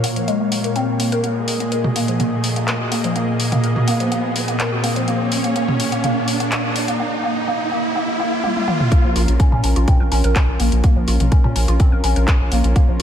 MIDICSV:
0, 0, Header, 1, 6, 480
1, 0, Start_track
1, 0, Key_signature, -5, "minor"
1, 0, Tempo, 480000
1, 1238, Time_signature, 4, 2, 24, 8
1, 13020, End_track
2, 0, Start_track
2, 0, Title_t, "Analog synth pad"
2, 0, Program_c, 0, 89
2, 0, Note_on_c, 0, 46, 73
2, 0, Note_on_c, 0, 58, 67
2, 0, Note_on_c, 0, 73, 69
2, 0, Note_on_c, 0, 77, 84
2, 1198, Note_off_c, 0, 77, 0
2, 1199, Note_off_c, 0, 46, 0
2, 1199, Note_off_c, 0, 73, 0
2, 1236, Note_on_c, 0, 46, 79
2, 1237, Note_on_c, 0, 68, 70
2, 1237, Note_on_c, 0, 75, 86
2, 5039, Note_off_c, 0, 75, 0
2, 5077, Note_on_c, 0, 73, 88
2, 6957, Note_off_c, 0, 46, 0
2, 6957, Note_off_c, 0, 68, 0
2, 6959, Note_off_c, 0, 58, 0
2, 6978, Note_off_c, 0, 73, 0
2, 8917, Note_on_c, 0, 61, 81
2, 8918, Note_on_c, 0, 65, 73
2, 8918, Note_on_c, 0, 70, 88
2, 13020, Note_off_c, 0, 61, 0
2, 13020, Note_off_c, 0, 65, 0
2, 13020, Note_off_c, 0, 70, 0
2, 13020, End_track
3, 0, Start_track
3, 0, Title_t, "Synth pluck"
3, 0, Program_c, 1, 84
3, 38, Note_on_c, 1, 58, 99
3, 98, Note_off_c, 1, 58, 0
3, 162, Note_on_c, 1, 53, 75
3, 218, Note_off_c, 1, 53, 0
3, 277, Note_on_c, 1, 56, 101
3, 367, Note_off_c, 1, 56, 0
3, 402, Note_on_c, 1, 56, 75
3, 458, Note_off_c, 1, 56, 0
3, 518, Note_on_c, 1, 58, 77
3, 554, Note_off_c, 1, 58, 0
3, 642, Note_on_c, 1, 70, 75
3, 698, Note_off_c, 1, 70, 0
3, 758, Note_on_c, 1, 60, 100
3, 848, Note_off_c, 1, 60, 0
3, 998, Note_on_c, 1, 58, 75
3, 1087, Note_off_c, 1, 58, 0
3, 1123, Note_on_c, 1, 70, 104
3, 1206, Note_off_c, 1, 70, 0
3, 1238, Note_on_c, 1, 58, 78
3, 1298, Note_off_c, 1, 58, 0
3, 1602, Note_on_c, 1, 58, 69
3, 1636, Note_off_c, 1, 58, 0
3, 1718, Note_on_c, 1, 70, 77
3, 1808, Note_off_c, 1, 70, 0
3, 1842, Note_on_c, 1, 66, 70
3, 1925, Note_off_c, 1, 66, 0
3, 1958, Note_on_c, 1, 58, 89
3, 2018, Note_off_c, 1, 58, 0
3, 2082, Note_on_c, 1, 53, 69
3, 2137, Note_off_c, 1, 53, 0
3, 2198, Note_on_c, 1, 58, 81
3, 2258, Note_off_c, 1, 58, 0
3, 2562, Note_on_c, 1, 58, 71
3, 2596, Note_off_c, 1, 58, 0
3, 2676, Note_on_c, 1, 70, 79
3, 2767, Note_off_c, 1, 70, 0
3, 2801, Note_on_c, 1, 66, 71
3, 2885, Note_off_c, 1, 66, 0
3, 2917, Note_on_c, 1, 58, 90
3, 2977, Note_off_c, 1, 58, 0
3, 3042, Note_on_c, 1, 53, 71
3, 3098, Note_off_c, 1, 53, 0
3, 3158, Note_on_c, 1, 58, 83
3, 3218, Note_off_c, 1, 58, 0
3, 3522, Note_on_c, 1, 58, 69
3, 3556, Note_off_c, 1, 58, 0
3, 3638, Note_on_c, 1, 70, 81
3, 3727, Note_off_c, 1, 70, 0
3, 3762, Note_on_c, 1, 66, 72
3, 3845, Note_off_c, 1, 66, 0
3, 3878, Note_on_c, 1, 58, 96
3, 3938, Note_off_c, 1, 58, 0
3, 4002, Note_on_c, 1, 53, 72
3, 4058, Note_off_c, 1, 53, 0
3, 4118, Note_on_c, 1, 58, 85
3, 4178, Note_off_c, 1, 58, 0
3, 4482, Note_on_c, 1, 58, 72
3, 4516, Note_off_c, 1, 58, 0
3, 4598, Note_on_c, 1, 70, 80
3, 4688, Note_off_c, 1, 70, 0
3, 4722, Note_on_c, 1, 66, 73
3, 4806, Note_off_c, 1, 66, 0
3, 4837, Note_on_c, 1, 58, 99
3, 4898, Note_off_c, 1, 58, 0
3, 4962, Note_on_c, 1, 53, 73
3, 5018, Note_off_c, 1, 53, 0
3, 5078, Note_on_c, 1, 58, 82
3, 5137, Note_off_c, 1, 58, 0
3, 5442, Note_on_c, 1, 58, 75
3, 5475, Note_off_c, 1, 58, 0
3, 5558, Note_on_c, 1, 58, 85
3, 5618, Note_off_c, 1, 58, 0
3, 5922, Note_on_c, 1, 58, 78
3, 5956, Note_off_c, 1, 58, 0
3, 6037, Note_on_c, 1, 58, 89
3, 6097, Note_off_c, 1, 58, 0
3, 6401, Note_on_c, 1, 58, 76
3, 6435, Note_off_c, 1, 58, 0
3, 6517, Note_on_c, 1, 58, 83
3, 6577, Note_off_c, 1, 58, 0
3, 6881, Note_on_c, 1, 58, 79
3, 6915, Note_off_c, 1, 58, 0
3, 6997, Note_on_c, 1, 58, 90
3, 7057, Note_off_c, 1, 58, 0
3, 7237, Note_on_c, 1, 58, 86
3, 7297, Note_off_c, 1, 58, 0
3, 7476, Note_on_c, 1, 58, 87
3, 7537, Note_off_c, 1, 58, 0
3, 7717, Note_on_c, 1, 58, 86
3, 7777, Note_off_c, 1, 58, 0
3, 7957, Note_on_c, 1, 58, 89
3, 8017, Note_off_c, 1, 58, 0
3, 8197, Note_on_c, 1, 58, 85
3, 8257, Note_off_c, 1, 58, 0
3, 8436, Note_on_c, 1, 58, 88
3, 8497, Note_off_c, 1, 58, 0
3, 8677, Note_on_c, 1, 58, 84
3, 8737, Note_off_c, 1, 58, 0
3, 8917, Note_on_c, 1, 58, 86
3, 8977, Note_off_c, 1, 58, 0
3, 9042, Note_on_c, 1, 53, 79
3, 9075, Note_off_c, 1, 53, 0
3, 9157, Note_on_c, 1, 65, 80
3, 9193, Note_off_c, 1, 65, 0
3, 9398, Note_on_c, 1, 61, 87
3, 9488, Note_off_c, 1, 61, 0
3, 9522, Note_on_c, 1, 61, 102
3, 9606, Note_off_c, 1, 61, 0
3, 9638, Note_on_c, 1, 61, 79
3, 9698, Note_off_c, 1, 61, 0
3, 9762, Note_on_c, 1, 65, 75
3, 9796, Note_off_c, 1, 65, 0
3, 9878, Note_on_c, 1, 60, 88
3, 9914, Note_off_c, 1, 60, 0
3, 10002, Note_on_c, 1, 70, 75
3, 10086, Note_off_c, 1, 70, 0
3, 10118, Note_on_c, 1, 61, 103
3, 10154, Note_off_c, 1, 61, 0
3, 10242, Note_on_c, 1, 70, 75
3, 10326, Note_off_c, 1, 70, 0
3, 10357, Note_on_c, 1, 61, 85
3, 10447, Note_off_c, 1, 61, 0
3, 10597, Note_on_c, 1, 58, 76
3, 10634, Note_off_c, 1, 58, 0
3, 10837, Note_on_c, 1, 58, 83
3, 10898, Note_off_c, 1, 58, 0
3, 10962, Note_on_c, 1, 53, 78
3, 10995, Note_off_c, 1, 53, 0
3, 11078, Note_on_c, 1, 65, 78
3, 11114, Note_off_c, 1, 65, 0
3, 11317, Note_on_c, 1, 61, 85
3, 11407, Note_off_c, 1, 61, 0
3, 11442, Note_on_c, 1, 61, 104
3, 11526, Note_off_c, 1, 61, 0
3, 11558, Note_on_c, 1, 61, 77
3, 11618, Note_off_c, 1, 61, 0
3, 11682, Note_on_c, 1, 65, 78
3, 11716, Note_off_c, 1, 65, 0
3, 11798, Note_on_c, 1, 60, 88
3, 11834, Note_off_c, 1, 60, 0
3, 11922, Note_on_c, 1, 70, 77
3, 12006, Note_off_c, 1, 70, 0
3, 12038, Note_on_c, 1, 61, 106
3, 12074, Note_off_c, 1, 61, 0
3, 12163, Note_on_c, 1, 70, 76
3, 12246, Note_off_c, 1, 70, 0
3, 12278, Note_on_c, 1, 61, 86
3, 12368, Note_off_c, 1, 61, 0
3, 12518, Note_on_c, 1, 58, 77
3, 12554, Note_off_c, 1, 58, 0
3, 12759, Note_on_c, 1, 58, 86
3, 12818, Note_off_c, 1, 58, 0
3, 12882, Note_on_c, 1, 53, 74
3, 12916, Note_off_c, 1, 53, 0
3, 13020, End_track
4, 0, Start_track
4, 0, Title_t, "Analog synth bass"
4, 0, Program_c, 2, 38
4, 9042, Note_on_c, 2, 34, 81
4, 9137, Note_off_c, 2, 34, 0
4, 9158, Note_on_c, 2, 34, 100
4, 9260, Note_off_c, 2, 34, 0
4, 9282, Note_on_c, 2, 34, 91
4, 9377, Note_off_c, 2, 34, 0
4, 9522, Note_on_c, 2, 46, 90
4, 9617, Note_off_c, 2, 46, 0
4, 9637, Note_on_c, 2, 34, 99
4, 9740, Note_off_c, 2, 34, 0
4, 9762, Note_on_c, 2, 34, 92
4, 9857, Note_off_c, 2, 34, 0
4, 10003, Note_on_c, 2, 34, 88
4, 10097, Note_off_c, 2, 34, 0
4, 10118, Note_on_c, 2, 34, 105
4, 10220, Note_off_c, 2, 34, 0
4, 10242, Note_on_c, 2, 34, 95
4, 10337, Note_off_c, 2, 34, 0
4, 10482, Note_on_c, 2, 34, 85
4, 10577, Note_off_c, 2, 34, 0
4, 10598, Note_on_c, 2, 34, 102
4, 10700, Note_off_c, 2, 34, 0
4, 10722, Note_on_c, 2, 34, 93
4, 10817, Note_off_c, 2, 34, 0
4, 10961, Note_on_c, 2, 34, 81
4, 11057, Note_off_c, 2, 34, 0
4, 11077, Note_on_c, 2, 34, 102
4, 11180, Note_off_c, 2, 34, 0
4, 11202, Note_on_c, 2, 34, 90
4, 11297, Note_off_c, 2, 34, 0
4, 11442, Note_on_c, 2, 46, 87
4, 11537, Note_off_c, 2, 46, 0
4, 11558, Note_on_c, 2, 34, 102
4, 11660, Note_off_c, 2, 34, 0
4, 11683, Note_on_c, 2, 34, 94
4, 11778, Note_off_c, 2, 34, 0
4, 11923, Note_on_c, 2, 34, 85
4, 12018, Note_off_c, 2, 34, 0
4, 12038, Note_on_c, 2, 34, 103
4, 12140, Note_off_c, 2, 34, 0
4, 12164, Note_on_c, 2, 34, 93
4, 12258, Note_off_c, 2, 34, 0
4, 12403, Note_on_c, 2, 34, 85
4, 12498, Note_off_c, 2, 34, 0
4, 12518, Note_on_c, 2, 34, 101
4, 12620, Note_off_c, 2, 34, 0
4, 12642, Note_on_c, 2, 34, 96
4, 12737, Note_off_c, 2, 34, 0
4, 12883, Note_on_c, 2, 34, 84
4, 12977, Note_off_c, 2, 34, 0
4, 13020, End_track
5, 0, Start_track
5, 0, Title_t, "Riser"
5, 0, Program_c, 3, 103
5, 0, Note_on_c, 3, 60, 75
5, 8918, Note_off_c, 3, 60, 0
5, 13020, End_track
6, 0, Start_track
6, 0, Title_t, "Drums"
6, 38, Note_on_c, 9, 46, 111
6, 138, Note_off_c, 9, 46, 0
6, 163, Note_on_c, 9, 42, 52
6, 263, Note_off_c, 9, 42, 0
6, 279, Note_on_c, 9, 42, 52
6, 379, Note_off_c, 9, 42, 0
6, 518, Note_on_c, 9, 46, 105
6, 618, Note_off_c, 9, 46, 0
6, 642, Note_on_c, 9, 42, 54
6, 742, Note_off_c, 9, 42, 0
6, 757, Note_on_c, 9, 42, 50
6, 857, Note_off_c, 9, 42, 0
6, 997, Note_on_c, 9, 46, 105
6, 1097, Note_off_c, 9, 46, 0
6, 1122, Note_on_c, 9, 42, 51
6, 1222, Note_off_c, 9, 42, 0
6, 1237, Note_on_c, 9, 42, 53
6, 1337, Note_off_c, 9, 42, 0
6, 1478, Note_on_c, 9, 46, 100
6, 1578, Note_off_c, 9, 46, 0
6, 1602, Note_on_c, 9, 42, 51
6, 1703, Note_off_c, 9, 42, 0
6, 1718, Note_on_c, 9, 42, 51
6, 1818, Note_off_c, 9, 42, 0
6, 1842, Note_on_c, 9, 45, 91
6, 1942, Note_off_c, 9, 45, 0
6, 1958, Note_on_c, 9, 46, 106
6, 2058, Note_off_c, 9, 46, 0
6, 2082, Note_on_c, 9, 42, 52
6, 2182, Note_off_c, 9, 42, 0
6, 2198, Note_on_c, 9, 42, 51
6, 2198, Note_on_c, 9, 45, 83
6, 2298, Note_off_c, 9, 42, 0
6, 2298, Note_off_c, 9, 45, 0
6, 2438, Note_on_c, 9, 46, 101
6, 2538, Note_off_c, 9, 46, 0
6, 2562, Note_on_c, 9, 42, 53
6, 2662, Note_off_c, 9, 42, 0
6, 2678, Note_on_c, 9, 39, 105
6, 2678, Note_on_c, 9, 42, 51
6, 2778, Note_off_c, 9, 39, 0
6, 2778, Note_off_c, 9, 42, 0
6, 2917, Note_on_c, 9, 46, 106
6, 3017, Note_off_c, 9, 46, 0
6, 3041, Note_on_c, 9, 42, 52
6, 3141, Note_off_c, 9, 42, 0
6, 3156, Note_on_c, 9, 42, 56
6, 3256, Note_off_c, 9, 42, 0
6, 3396, Note_on_c, 9, 46, 101
6, 3496, Note_off_c, 9, 46, 0
6, 3520, Note_on_c, 9, 42, 53
6, 3520, Note_on_c, 9, 45, 89
6, 3621, Note_off_c, 9, 42, 0
6, 3621, Note_off_c, 9, 45, 0
6, 3636, Note_on_c, 9, 42, 53
6, 3736, Note_off_c, 9, 42, 0
6, 3760, Note_on_c, 9, 45, 90
6, 3860, Note_off_c, 9, 45, 0
6, 3876, Note_on_c, 9, 46, 106
6, 3976, Note_off_c, 9, 46, 0
6, 4002, Note_on_c, 9, 42, 56
6, 4102, Note_off_c, 9, 42, 0
6, 4117, Note_on_c, 9, 42, 54
6, 4217, Note_off_c, 9, 42, 0
6, 4357, Note_on_c, 9, 46, 100
6, 4457, Note_off_c, 9, 46, 0
6, 4481, Note_on_c, 9, 42, 56
6, 4581, Note_off_c, 9, 42, 0
6, 4597, Note_on_c, 9, 39, 106
6, 4597, Note_on_c, 9, 42, 53
6, 4697, Note_off_c, 9, 39, 0
6, 4697, Note_off_c, 9, 42, 0
6, 4837, Note_on_c, 9, 46, 102
6, 4937, Note_off_c, 9, 46, 0
6, 4962, Note_on_c, 9, 42, 56
6, 5062, Note_off_c, 9, 42, 0
6, 5078, Note_on_c, 9, 42, 57
6, 5178, Note_off_c, 9, 42, 0
6, 5317, Note_on_c, 9, 46, 102
6, 5417, Note_off_c, 9, 46, 0
6, 5441, Note_on_c, 9, 42, 55
6, 5541, Note_off_c, 9, 42, 0
6, 5557, Note_on_c, 9, 42, 58
6, 5657, Note_off_c, 9, 42, 0
6, 5682, Note_on_c, 9, 45, 92
6, 5782, Note_off_c, 9, 45, 0
6, 5797, Note_on_c, 9, 46, 102
6, 5897, Note_off_c, 9, 46, 0
6, 5922, Note_on_c, 9, 42, 58
6, 6022, Note_off_c, 9, 42, 0
6, 6038, Note_on_c, 9, 42, 59
6, 6038, Note_on_c, 9, 45, 84
6, 6138, Note_off_c, 9, 42, 0
6, 6138, Note_off_c, 9, 45, 0
6, 6277, Note_on_c, 9, 46, 95
6, 6377, Note_off_c, 9, 46, 0
6, 6402, Note_on_c, 9, 42, 59
6, 6502, Note_off_c, 9, 42, 0
6, 6517, Note_on_c, 9, 39, 110
6, 6517, Note_on_c, 9, 42, 55
6, 6617, Note_off_c, 9, 39, 0
6, 6617, Note_off_c, 9, 42, 0
6, 6757, Note_on_c, 9, 46, 100
6, 6857, Note_off_c, 9, 46, 0
6, 6882, Note_on_c, 9, 42, 59
6, 6982, Note_off_c, 9, 42, 0
6, 8438, Note_on_c, 9, 48, 59
6, 8538, Note_off_c, 9, 48, 0
6, 8563, Note_on_c, 9, 48, 62
6, 8663, Note_off_c, 9, 48, 0
6, 8677, Note_on_c, 9, 47, 86
6, 8777, Note_off_c, 9, 47, 0
6, 8802, Note_on_c, 9, 45, 85
6, 8902, Note_off_c, 9, 45, 0
6, 8917, Note_on_c, 9, 36, 115
6, 8918, Note_on_c, 9, 42, 59
6, 9017, Note_off_c, 9, 36, 0
6, 9018, Note_off_c, 9, 42, 0
6, 9158, Note_on_c, 9, 46, 103
6, 9258, Note_off_c, 9, 46, 0
6, 9282, Note_on_c, 9, 42, 59
6, 9382, Note_off_c, 9, 42, 0
6, 9397, Note_on_c, 9, 36, 119
6, 9397, Note_on_c, 9, 42, 56
6, 9497, Note_off_c, 9, 36, 0
6, 9497, Note_off_c, 9, 42, 0
6, 9521, Note_on_c, 9, 45, 83
6, 9621, Note_off_c, 9, 45, 0
6, 9637, Note_on_c, 9, 46, 107
6, 9737, Note_off_c, 9, 46, 0
6, 9762, Note_on_c, 9, 42, 58
6, 9862, Note_off_c, 9, 42, 0
6, 9877, Note_on_c, 9, 42, 58
6, 9877, Note_on_c, 9, 45, 75
6, 9878, Note_on_c, 9, 36, 122
6, 9977, Note_off_c, 9, 42, 0
6, 9977, Note_off_c, 9, 45, 0
6, 9978, Note_off_c, 9, 36, 0
6, 10117, Note_on_c, 9, 46, 100
6, 10217, Note_off_c, 9, 46, 0
6, 10241, Note_on_c, 9, 42, 63
6, 10341, Note_off_c, 9, 42, 0
6, 10356, Note_on_c, 9, 39, 118
6, 10356, Note_on_c, 9, 42, 56
6, 10358, Note_on_c, 9, 36, 117
6, 10456, Note_off_c, 9, 39, 0
6, 10456, Note_off_c, 9, 42, 0
6, 10458, Note_off_c, 9, 36, 0
6, 10597, Note_on_c, 9, 46, 103
6, 10697, Note_off_c, 9, 46, 0
6, 10721, Note_on_c, 9, 42, 59
6, 10821, Note_off_c, 9, 42, 0
6, 10837, Note_on_c, 9, 42, 57
6, 10838, Note_on_c, 9, 36, 119
6, 10937, Note_off_c, 9, 42, 0
6, 10938, Note_off_c, 9, 36, 0
6, 11077, Note_on_c, 9, 46, 110
6, 11177, Note_off_c, 9, 46, 0
6, 11201, Note_on_c, 9, 42, 57
6, 11201, Note_on_c, 9, 45, 81
6, 11301, Note_off_c, 9, 42, 0
6, 11301, Note_off_c, 9, 45, 0
6, 11317, Note_on_c, 9, 42, 55
6, 11318, Note_on_c, 9, 36, 127
6, 11417, Note_off_c, 9, 42, 0
6, 11418, Note_off_c, 9, 36, 0
6, 11442, Note_on_c, 9, 45, 85
6, 11542, Note_off_c, 9, 45, 0
6, 11558, Note_on_c, 9, 46, 111
6, 11658, Note_off_c, 9, 46, 0
6, 11682, Note_on_c, 9, 42, 58
6, 11782, Note_off_c, 9, 42, 0
6, 11797, Note_on_c, 9, 42, 57
6, 11799, Note_on_c, 9, 36, 121
6, 11897, Note_off_c, 9, 42, 0
6, 11899, Note_off_c, 9, 36, 0
6, 12037, Note_on_c, 9, 46, 111
6, 12137, Note_off_c, 9, 46, 0
6, 12162, Note_on_c, 9, 42, 58
6, 12262, Note_off_c, 9, 42, 0
6, 12277, Note_on_c, 9, 39, 124
6, 12277, Note_on_c, 9, 42, 56
6, 12278, Note_on_c, 9, 36, 122
6, 12377, Note_off_c, 9, 39, 0
6, 12377, Note_off_c, 9, 42, 0
6, 12378, Note_off_c, 9, 36, 0
6, 12516, Note_on_c, 9, 46, 111
6, 12616, Note_off_c, 9, 46, 0
6, 12642, Note_on_c, 9, 42, 58
6, 12742, Note_off_c, 9, 42, 0
6, 12758, Note_on_c, 9, 36, 116
6, 12758, Note_on_c, 9, 42, 56
6, 12858, Note_off_c, 9, 36, 0
6, 12858, Note_off_c, 9, 42, 0
6, 13020, End_track
0, 0, End_of_file